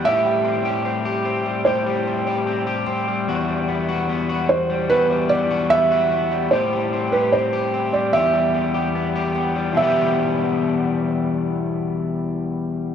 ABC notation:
X:1
M:4/4
L:1/16
Q:1/4=74
K:Em
V:1 name="Felt piano"
e8 c6 z2 | z6 c2 B2 d2 e4 | c3 B c3 d e6 z2 | e16 |]
V:2 name="Clean electric guitar"
[A,,G] G, C G C G C G, [A,,G] G, C G C G C G, | [E,,F] G, B, F B, F2 G, [E,,F] G, B, F B, F B, G, | [A,,G] G, C G C G C G, [E,,G] G, B, G B, G B, G, | [E,,B,,E,G,B,G]16 |]